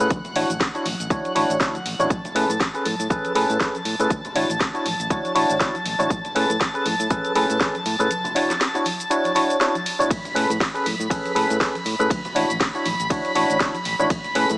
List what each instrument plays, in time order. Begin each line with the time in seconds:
Already playing: violin section F#5 F#6
0.00 tine electric piano G#4 A4 B4, shaker
0.10 fingered electric bass D2, kick, closed hi-hat, tambourine, high conga, shaker
0.24 closed hi-hat, tambourine, low conga, shaker
0.35 fingered electric bass A1, tine electric piano D4 E4 F#4 C#5, open hi-hat, tambourine
0.50 fingered electric bass A1, closed hi-hat, tambourine, high conga, shaker
0.60 fingered electric bass D2, kick, snare, closed hi-hat, shaker
0.74 tine electric piano D4 E4 F#4 C#5, closed hi-hat, tambourine, shaker
0.85 fingered electric bass A1, open hi-hat, tambourine, high conga
0.99 fingered electric bass A1, closed hi-hat, tambourine, shaker
1.10 fingered electric bass D2, tine electric piano D4 E4 F#4 C#5, kick, closed hi-hat, tambourine, shaker
1.25 closed hi-hat, tambourine, high conga, shaker
1.35 fingered electric bass A1, tine electric piano D4 E4 F#4 C#5, open hi-hat, tambourine
1.49 fingered electric bass A1, closed hi-hat, tambourine, shaker
1.60 fingered electric bass D2, tine electric piano D4 E4, kick, snare, closed hi-hat, shaker
1.74 closed hi-hat, high conga, shaker
1.85 fingered electric bass A1, open hi-hat, tambourine
1.99 fingered electric bass A1, tine electric piano D4 E4 F#4 C#5, closed hi-hat, tambourine, low conga, shaker
2.10 fingered electric bass A1, violin section A5 A6, kick, closed hi-hat, tambourine, high conga, shaker
2.25 closed hi-hat, tambourine, low conga, shaker
2.35 fingered electric bass A2, tine electric piano C#4 G#4 A4 B4, open hi-hat, tambourine
2.49 fingered electric bass A2, closed hi-hat, tambourine, high conga, shaker
2.60 fingered electric bass A1, kick, snare, closed hi-hat, shaker
2.74 tine electric piano C#4 G#4 A4 B4, closed hi-hat, tambourine, shaker
2.85 fingered electric bass A2, open hi-hat, tambourine, high conga
2.99 fingered electric bass A2, closed hi-hat, tambourine, shaker
3.10 fingered electric bass A1, tine electric piano C#4 G#4 A4 B4, kick, closed hi-hat, tambourine, shaker
3.25 closed hi-hat, high conga, shaker
3.35 fingered electric bass A2, tine electric piano C#4 G#4 A4 B4, open hi-hat, tambourine
3.49 fingered electric bass A2, closed hi-hat, tambourine, shaker
3.60 fingered electric bass A1, tine electric piano C#4 G#4 A4 B4, kick, snare, closed hi-hat, shaker
3.75 closed hi-hat, high conga, shaker
3.85 fingered electric bass A2, open hi-hat, tambourine
3.99 fingered electric bass A2, tine electric piano C#4 G#4 A4 B4, closed hi-hat, tambourine, low conga, shaker
4.10 fingered electric bass D2, kick, closed hi-hat, tambourine, high conga, shaker
4.25 closed hi-hat, tambourine, low conga, shaker
4.35 fingered electric bass A1, tine electric piano D4 E4 F#4 C#5, open hi-hat, tambourine
4.50 fingered electric bass A1, closed hi-hat, tambourine, high conga, shaker
4.60 fingered electric bass D2, kick, snare, closed hi-hat, shaker
4.74 tine electric piano D4 E4 F#4 C#5, closed hi-hat, tambourine, shaker
4.85 fingered electric bass A1, open hi-hat, tambourine, high conga
4.99 fingered electric bass A1, closed hi-hat, tambourine, shaker
5.10 fingered electric bass D2, tine electric piano D4 E4 F#4 C#5, kick, closed hi-hat, tambourine, shaker
5.25 closed hi-hat, high conga, shaker
5.35 fingered electric bass A1, tine electric piano D4 E4 F#4 C#5, open hi-hat, tambourine
5.50 fingered electric bass A1, closed hi-hat, tambourine, shaker
5.60 fingered electric bass D2, tine electric piano D4 E4 F#4 C#5, kick, snare, closed hi-hat, shaker
5.75 closed hi-hat, high conga, shaker
5.86 fingered electric bass A1, open hi-hat, tambourine
5.99 fingered electric bass A1, tine electric piano D4 E4 F#4 C#5, closed hi-hat, tambourine, low conga, shaker
6.10 fingered electric bass A1, kick, closed hi-hat, tambourine, high conga, shaker
6.25 closed hi-hat, tambourine, low conga, shaker
6.35 fingered electric bass A2, tine electric piano C#4 G#4 A4 B4, open hi-hat, tambourine
6.50 fingered electric bass A2, closed hi-hat, tambourine, high conga, shaker
6.61 fingered electric bass A1, kick, snare, closed hi-hat, shaker
6.74 tine electric piano C#4 G#4 A4 B4, closed hi-hat, tambourine, shaker
6.85 fingered electric bass A2, open hi-hat, tambourine, high conga
7.00 fingered electric bass A2, closed hi-hat, tambourine, shaker
7.10 fingered electric bass A1, tine electric piano C#4 G#4 A4 B4, kick, closed hi-hat, shaker
7.25 closed hi-hat, high conga, shaker
7.35 fingered electric bass A2, tine electric piano C#4 G#4 A4 B4, open hi-hat, tambourine
7.50 fingered electric bass A2, closed hi-hat, tambourine, shaker
7.60 fingered electric bass A1, tine electric piano G#4 A4 B4, kick, snare, closed hi-hat, shaker
7.74 closed hi-hat, high conga, shaker
7.85 fingered electric bass A2, open hi-hat, tambourine
7.99 fingered electric bass A2, tine electric piano C#4 G#4 A4 B4, closed hi-hat, tambourine, low conga, shaker
8.10 closed hi-hat, tambourine, high conga, shaker
8.24 closed hi-hat, tambourine, low conga, shaker
8.35 tine electric piano D4 E4 F#4 C#5, open hi-hat, tambourine
8.50 snare, closed hi-hat, tambourine, high conga, shaker
8.60 snare, closed hi-hat, tambourine, shaker
8.74 tine electric piano D4 E4 F#4 C#5, closed hi-hat, tambourine, shaker
8.85 open hi-hat, tambourine, high conga
8.99 closed hi-hat, tambourine, shaker
9.10 tine electric piano D4 E4 F#4 C#5, closed hi-hat, tambourine, shaker
9.24 closed hi-hat, tambourine, high conga, shaker
9.35 tine electric piano D4 E4 F#4 C#5, open hi-hat, tambourine
9.49 closed hi-hat, tambourine, shaker
9.59 tine electric piano D4 E4 F#4 C#5, snare, closed hi-hat, tambourine, shaker
9.75 closed hi-hat, tambourine, high conga, shaker
9.86 open hi-hat, tambourine
9.99 tine electric piano D4 E4 F#4 C#5, closed hi-hat, tambourine, low conga, shaker
10.10 fingered electric bass A1, violin section B5 B6, kick, closed hi-hat, ride, tambourine, high conga, shaker
10.25 closed hi-hat, tambourine, low conga, shaker
10.35 fingered electric bass A2, tine electric piano C#4 G#4 A4 B4, open hi-hat, tambourine
10.50 fingered electric bass A2, closed hi-hat, tambourine, high conga, shaker
10.60 fingered electric bass A1, kick, snare, closed hi-hat, ride, tambourine, shaker
10.74 tine electric piano C#4 G#4 A4 B4, closed hi-hat, tambourine, shaker
10.86 fingered electric bass A2, open hi-hat, tambourine, high conga
11.00 fingered electric bass A2, closed hi-hat, tambourine, shaker
11.10 fingered electric bass A1, tine electric piano C#4 G#4 A4 B4, kick, closed hi-hat, ride, tambourine, shaker
11.25 closed hi-hat, high conga, shaker
11.35 fingered electric bass A2, tine electric piano C#4 G#4 A4 B4, open hi-hat, tambourine
11.50 fingered electric bass A2, closed hi-hat, tambourine, shaker
11.60 fingered electric bass A1, tine electric piano C#4 G#4 A4 B4, kick, snare, closed hi-hat, ride, shaker
11.75 closed hi-hat, high conga, shaker
11.85 fingered electric bass A2, open hi-hat, tambourine
11.99 fingered electric bass A2, tine electric piano C#4 G#4 A4 B4, closed hi-hat, tambourine, low conga, shaker
12.10 fingered electric bass D2, kick, closed hi-hat, ride, tambourine, high conga, shaker
12.25 closed hi-hat, tambourine, low conga, shaker
12.35 fingered electric bass A1, tine electric piano D4 E4 F#4 C#5, open hi-hat, tambourine
12.49 fingered electric bass A1, closed hi-hat, tambourine, high conga, shaker
12.60 fingered electric bass D2, kick, snare, closed hi-hat, ride, shaker
12.74 tine electric piano D4 E4 F#4 C#5, closed hi-hat, tambourine, shaker
12.85 fingered electric bass A1, open hi-hat, tambourine, high conga
13.00 fingered electric bass A1, closed hi-hat, tambourine, shaker
13.10 fingered electric bass D2, tine electric piano D4 E4 F#4 C#5, kick, closed hi-hat, ride, tambourine, shaker
13.24 closed hi-hat, high conga, shaker
13.35 fingered electric bass A1, tine electric piano D4 E4 F#4 C#5, open hi-hat, tambourine
13.50 fingered electric bass A1, closed hi-hat, tambourine, shaker
13.60 fingered electric bass D2, tine electric piano D4 E4 F#4 C#5, kick, snare, closed hi-hat, ride, shaker
13.74 closed hi-hat, high conga, shaker
13.85 fingered electric bass A1, open hi-hat, tambourine
13.99 fingered electric bass A1, tine electric piano D4 E4 F#4 C#5, closed hi-hat, tambourine, low conga, shaker
14.10 fingered electric bass A1, kick, closed hi-hat, ride, tambourine, high conga, shaker
14.24 closed hi-hat, tambourine, low conga, shaker
14.35 fingered electric bass A2, tine electric piano C#4 G#4 A4 B4, open hi-hat, tambourine
14.49 fingered electric bass A2, closed hi-hat, tambourine, high conga, shaker